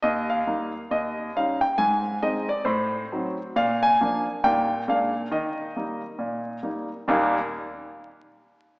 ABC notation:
X:1
M:4/4
L:1/8
Q:"Swing" 1/4=136
K:Eb
V:1 name="Grand piano"
e f3 e2 f g | a2 e d c3 z | f a3 g2 f2 | e6- e z |
[E,,B,,G,B,EG] z6 z |]
V:2 name="Grand piano"
E,,2 [G,B,E]2 E,,2 [G,_DE]2 | A,,2 [A,CE]2 =A,,2 [^F,CE]2 | B,,2 [F,B,D]2 [B,,G,B,E]2 [B,,A,B,D]2 | E,2 [G,B,E]2 B,,2 [G,B,E]2 |
z8 |]